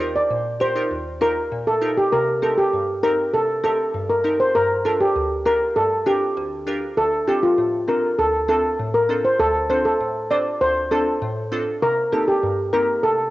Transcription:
Already playing: synth pluck D#2
0.00 synth pluck D#4 F4 G4 A#4
0.16 steel pan D5
0.31 synth pluck A#2
0.60 synth pluck G4 A#4, steel pan C5
0.76 synth pluck D#4 F4 G4 A#4
0.91 synth pluck D#2
1.21 synth pluck D#4 F4 G4 A#4, steel pan A#4
1.52 synth pluck A#2
1.67 steel pan A4
1.82 synth pluck D#4 F4 G4 A#4
1.98 steel pan G4
2.12 synth pluck C3, steel pan A#4
2.42 synth pluck C4 D#4 G4 A#4, steel pan A4
2.58 steel pan G4
2.73 synth pluck G2
3.03 synth pluck C4 D#4 G4 A#4, steel pan A#4
3.33 synth pluck C3, steel pan A4
3.64 synth pluck C4 D#4 G4 A#4, steel pan A4
3.94 synth pluck G2
4.10 steel pan A#4
4.24 synth pluck C4 D#4 G4 A#4
4.40 steel pan C5
4.55 synth pluck G2, steel pan A#4
4.85 synth pluck D4 F4 G4 A#4, steel pan A4
5.00 steel pan G4
5.16 synth pluck D2
5.45 synth pluck D4 F4 G4 A#4, steel pan A#4
5.76 synth pluck G2, steel pan A4
6.06 synth pluck D4 F4 G4 A#4, steel pan G4
6.37 synth pluck D2
6.67 synth pluck D4 F4 G4 A#4
6.97 synth pluck D2, steel pan A4
7.27 synth pluck C4 D4 F4 A4, steel pan G4
7.43 steel pan F4
7.58 synth pluck A2
7.88 synth pluck C4 D4 F4 A4, steel pan A#4
8.19 synth pluck D2, steel pan A4
8.48 synth pluck C4 D4 F4 A4, steel pan A4
8.79 synth pluck A2
8.94 steel pan A#4
9.09 synth pluck C4 D4 F4 A4
9.25 steel pan C5
9.40 synth pluck D2, steel pan A4
9.70 synth pluck C4 D4 F4 A4, steel pan C5
9.85 steel pan A4
10.01 synth pluck A2
10.30 synth pluck C4 D4 F4 C5, steel pan D5
10.61 synth pluck D2, steel pan C5
10.91 synth pluck C4 D4 F4 A4, steel pan A4
11.22 synth pluck A2
11.52 synth pluck C4 D4 F4 A4
11.82 synth pluck C3, steel pan A#4
12.12 synth pluck A#3 C4 D#4 G4, steel pan A4
12.28 steel pan G4
12.43 synth pluck G2
12.73 synth pluck A#3 C4 D#4 G4, steel pan A#4
13.03 synth pluck C3, steel pan A4

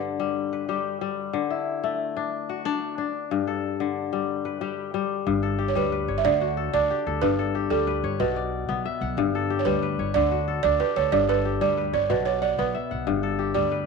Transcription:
Already playing: kora G2 D3 D4 A4, balafon B4
0.20 kora G3
0.53 kora B4
0.69 kora G3 G4
1.01 kora G3
1.33 kora D3
1.50 kora E4
1.84 kora A3
2.17 kora D4
2.49 kora F#4
2.65 kora D4
2.98 kora D4
3.31 kora G2
3.47 kora A4
3.80 kora D3
4.13 kora G3
4.45 kora B4
4.61 kora G3 G4
4.94 kora G3
5.27 upright bass G1, kora G2
5.43 kora A4
5.59 kora G4
5.68 balafon C#5
5.76 upright bass D2, kora G3, balafon B4
5.92 kora B4
6.08 upright bass G1, kora C#5
6.18 balafon E5
6.24 upright bass D2, kora D3, balafon D5
6.41 kora F#4
6.57 kora A4
6.74 upright bass D2, kora D4, balafon D5
6.91 kora G4
7.07 upright bass D2, kora A4
7.22 upright bass G1, kora G2, balafon B4
7.39 kora A4
7.55 kora G4
7.70 upright bass D2, kora G3, balafon A4
7.87 kora B4
8.03 upright bass G1, kora C#5
8.20 upright bass B1, kora B2, balafon B4
8.36 kora D5
8.69 upright bass B1, kora B3
8.86 kora E5
9.01 upright bass B1, kora F#5
9.17 upright bass G1, kora G2
9.35 kora A4
9.50 kora G4
9.59 balafon C#5
9.65 upright bass D2, kora G3, balafon B4
9.83 kora B4
9.99 upright bass G1, kora C#5
10.14 upright bass D2, kora D3, balafon D5
10.31 kora F#4
10.48 kora A4
10.63 upright bass D2, kora D4, balafon D5
10.80 kora G4, balafon B4
10.96 upright bass D2, kora A4, balafon C#5
11.12 upright bass G1, kora G2, balafon D5
11.28 kora A4, balafon B4
11.45 kora G4
11.61 upright bass D2, kora G3, balafon D5
11.77 kora B4
11.93 upright bass G1, kora C#5, balafon D5
12.10 upright bass B1, kora B2, balafon B4
12.25 balafon C#5, kora D5
12.42 balafon D5, kora F#5
12.58 upright bass B1, kora B3, balafon B4
12.75 kora E5
12.91 upright bass B1, kora F#5
13.07 upright bass G1, kora G2
13.23 kora A4
13.39 kora G4
13.55 upright bass D2, kora G3, balafon D5
13.71 kora B4

